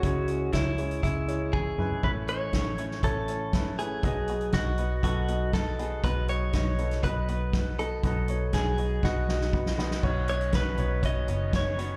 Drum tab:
CC |----------------|x---------------|----------------|----------------|
HH |x-x-x-xxx-x-----|--x-x-x-x-x-x-x-|x-xxx-x-x-x-x-x-|x-x-x-xxx-x-x-x-|
SD |----o-----------|----o--o----o---|----o-------o---|----o--o----o---|
T1 |------------o---|----------------|----------------|----------------|
T2 |--------------o-|----------------|----------------|----------------|
FT |---------------o|----------------|----------------|----------------|
BD |o---o---o---o---|o---o---o---o---|o---o---o---o---|o---o---o---o---|

CC |----------------|x---------------|
HH |x-x-x-x---------|--xxx-x-x-x-x-x-|
SD |----o---o-oo-ooo|----o-------o---|
T1 |----------------|----------------|
T2 |----------------|----------------|
FT |----------------|------o---------|
BD |o---o---o---o---|o---o---o---o---|